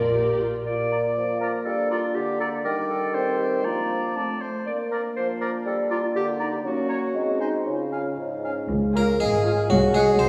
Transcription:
Already playing: double bass section A#1, cello section A#2, bassoon A#3, violin section A#4 D5
0.14 viola section G4
0.40 viola section F4
0.66 french horn section A#3 F4, bassoon A#3, clarinet D5
0.92 oboe D5, flute A#5
1.17 bassoon F3
1.41 clarinet A#4, oboe D5, flute A#5
1.65 bassoon G3, french horn section D4, clarinet A4
1.91 clarinet F4, oboe D5, flute A#5
2.15 bassoon D3, clarinet G4
2.40 clarinet A4, oboe D5, flute A#5
2.64 bassoon D#3, french horn section G3, clarinet A#4, oboe D5, flute G5
2.89 clarinet A4
3.14 french horn section C4, oboe C5, flute G5
3.39 clarinet G4
3.64 bassoon F3, french horn section A#3 D4, clarinet F4, oboe D5, flute A#5
4.16 french horn section A3 C4, oboe D5, flute A5
4.41 oboe C5
4.66 french horn section A#3 D4, bassoon A#3, clarinet D5
4.91 clarinet A#4, oboe D5, flute A#5
5.17 bassoon F3, clarinet C5
5.41 clarinet A#4, oboe D5, flute A#5
5.65 bassoon G3, clarinet A4
5.91 clarinet F4, oboe D5, flute A#5
6.15 bassoon D3, clarinet G4
6.39 clarinet D#4, oboe D5, flute A#5
6.64 bassoon F#3, french horn section A#3 C#4, clarinet F#4
6.89 oboe C#5, flute A#5
7.14 bassoon G#3, french horn section C4 D#4
7.40 clarinet D#4, oboe C5, flute G#5
7.65 bassoon C#3, french horn section C#4 F4, clarinet C#4
7.92 oboe F5, flute G#5
8.17 bassoon G#2, french horn section D#4
8.43 french horn section C#4, oboe F5, flute G#5
8.69 cello section C#2, double bass section C#2, french horn section F4 G#4
8.94 bassoon A#3, viola section F4, clarinet G#4, violin section G#4 C#5, harpsichord A#4, oboe F5, flute A#5
9.20 double bass section G#1, cello section G#2, bassoon G#3, harpsichord G#4, flute G#5
9.45 viola section F4, clarinet G#4, violin section G#4 C#5, oboe F5
9.69 cello section C2, double bass section C2, bassoon F#3, french horn section F#4, harpsichord F#4, flute F#5
9.94 bassoon G#3, viola section F#4, harpsichord G#4, violin section G#4 D#5, clarinet G#4, oboe F#5, flute G#5
10.12 bassoon C#4
10.19 cello section C2, double bass section C2, bassoon C4, harpsichord C5, flute C6

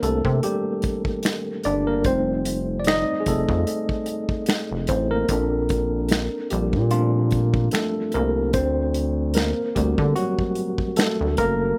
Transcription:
Already playing: tine electric piano D#3 A#3 C4 D4 A#4 C5
0.03 analog synth bass C2, tine electric piano A3 A4, closed hi-hat
0.25 analog synth bass C3, kick
0.43 tine electric piano G3 G4, closed hi-hat
0.82 kick, closed hi-hat
1.05 kick
1.23 finger snap, snare, closed hi-hat
1.64 analog synth bass G1, tine electric piano D4 D5, closed hi-hat
1.87 tine electric piano A#3 A#4
2.04 analog synth bass F1, tine electric piano G3 A3 C4 D#4 C5, kick, closed hi-hat
2.45 closed hi-hat
2.80 tine electric piano D5
2.84 tine electric piano D#5, finger snap, snare, closed hi-hat
2.88 tine electric piano D#4
3.20 tine electric piano G#4
3.26 analog synth bass F1, tine electric piano A3 A4, kick, closed hi-hat
3.49 analog synth bass F2, kick
3.67 closed hi-hat
3.89 kick
4.06 closed hi-hat
4.29 kick
4.46 finger snap, snare, closed hi-hat
4.72 analog synth bass F1
4.87 analog synth bass A1, tine electric piano C4 C5, kick, closed hi-hat
5.11 tine electric piano A#3 A#4
5.28 analog synth bass A#1, tine electric piano C4 D4 A4, kick, closed hi-hat
5.69 kick, closed hi-hat
6.09 finger snap, snare, closed hi-hat
6.50 analog synth bass A#1, tine electric piano G3 G4, closed hi-hat
6.73 analog synth bass A#2, kick
6.91 tine electric piano F3 A3 C4 D4 F4, closed hi-hat
7.31 kick, closed hi-hat
7.54 kick
7.71 tine electric piano A3 A4, finger snap, snare, closed hi-hat
8.12 analog synth bass C2, tine electric piano A#4, closed hi-hat
8.17 tine electric piano A#3
8.53 analog synth bass D2, tine electric piano C4 C5, kick, closed hi-hat
8.94 closed hi-hat
9.34 tine electric piano A#3 A#4, finger snap, snare, closed hi-hat
9.75 analog synth bass D2, tine electric piano G3 A3 C4 F#4 G4, kick, closed hi-hat
9.98 analog synth bass D3, kick
10.16 tine electric piano F#3 F#4, closed hi-hat
10.39 kick
10.55 closed hi-hat
10.78 kick
10.96 tine electric piano A3 A4, finger snap, snare, closed hi-hat
11.21 analog synth bass D2
11.37 analog synth bass F#1, tine electric piano A#3 A#4, kick, closed hi-hat

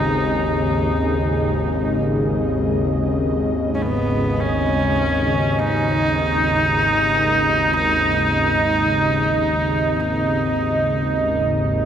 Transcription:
Already playing: synth drone G#1 D#2, analog synth pad G#2 C#3 G#4 D#5, horsehead fiddle D#4
3.75 horsehead fiddle C#4
3.82 horsehead fiddle B3
4.41 horsehead fiddle C#4
5.59 horsehead fiddle D#4

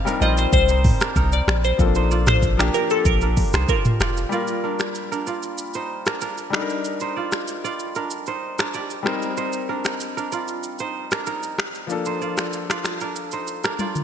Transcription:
Already playing: grand piano G3 C4 D#4 A#4, kora C5
0.05 grand piano G3 C4 D#4 A#4, kora D4 A#4, shaker
0.20 sub bass A#1, grand piano G3 C4 D#4 C5, kora F4 D5, synth pluck D#5, shaker
0.37 synth pluck C5, shaker
0.53 sub bass C2, synth pluck C5, kick, shaker
0.69 kora D#4 C5, shaker
0.84 kick, mid tom, open hi-hat
1.01 kora D4 A#4, finger snap, cross-stick, shaker
1.16 sub bass C2, kora D#4 A#4, kick, shaker
1.32 synth pluck D5, shaker
1.48 sub bass A#1, finger snap, cross-stick
1.64 synth pluck C5, shaker
1.78 sub bass A#1, grand piano F3 A#3 C4 A4, kick, shaker
1.86 grand piano D4
1.95 kora D#4 C5, shaker
2.11 kora F4 D5, shaker
2.27 synth pluck C5, finger snap, cross-stick, mid tom, shaker
2.42 kick, shaker
2.57 grand piano F3 A#3 D4 G4, kora D4 A#4, finger snap, cross-stick, shaker
2.73 grand piano F3 A#3 D4 G4, synth pluck A#4, shaker
2.90 kora C4 A4, synth pluck A4, shaker
3.05 sub bass A#1, synth pluck A#4, kick, shaker
3.21 kora D4 A#4, shaker
3.37 kick, open hi-hat, shaker
3.53 sub bass C2, kora D#4 C5, finger snap, cross-stick, shaker
3.69 kora F4 D5, synth pluck A#4, kick, shaker
3.85 mid tom, shaker
4.00 sub bass F1, kora F4 D5, finger snap, cross-stick, shaker
4.17 shaker
4.29 grand piano G3 A#3 F4, kora F4 D5, shaker
4.34 grand piano A#4
4.48 shaker
4.64 kora D4 A#4
4.79 finger snap, cross-stick, shaker
4.95 shaker
5.12 kora D4 A#4, shaker
5.27 kora F4 D5, shaker
5.43 shaker
5.58 shaker
5.74 kora D#4 C5, shaker
6.06 kora D4 A#4, finger snap, cross-stick, shaker
6.21 kora D4 A#4, shaker
6.38 shaker
6.50 grand piano G3 D4 D#4, finger snap, cross-stick
6.55 grand piano A4
6.62 grand piano A#4
6.70 shaker
6.85 shaker
7.00 kora D#4 C5, shaker
7.16 kora F4 D5
7.32 finger snap, cross-stick, shaker
7.48 shaker
7.64 kora F4 D5, shaker
7.79 shaker
7.95 kora D4 A#4, shaker
8.11 shaker
8.26 kora D#4 C5, shaker
8.59 kora D4 A#4, finger snap, cross-stick, shaker
8.74 kora G4 D5, shaker
8.90 shaker
9.03 grand piano G3 C4 D#4, kora D#4 C5, cross-stick
9.07 grand piano A#4, finger snap
9.22 shaker
9.37 kora D#4 C5, shaker
9.53 shaker
9.69 kora D4 A#4
9.85 finger snap, cross-stick, shaker
10.00 shaker
10.17 kora D4 A#4, shaker
10.32 kora F4 D5, shaker
10.48 shaker
10.63 shaker
10.79 kora D#4 C5, shaker
11.11 kora D4 A#4, finger snap, cross-stick, shaker
11.27 kora D#4 A#4, shaker
11.43 shaker
11.59 finger snap, cross-stick
11.75 shaker
11.87 grand piano F3 A#3 D4, shaker
11.92 grand piano A4
12.05 kora D#4 C5, shaker
12.22 kora F4 D5, shaker
12.37 finger snap, cross-stick, shaker
12.53 shaker
12.70 kora F4 D5, finger snap, cross-stick, shaker
12.84 finger snap, cross-stick, shaker
13.01 kora D4 A#4, shaker
13.16 shaker
13.32 kora D#4 C5, shaker
13.47 shaker
13.64 kora D4 A#4, finger snap, cross-stick, shaker
13.79 kora F4 D5, high tom, shaker
13.95 mid tom, shaker

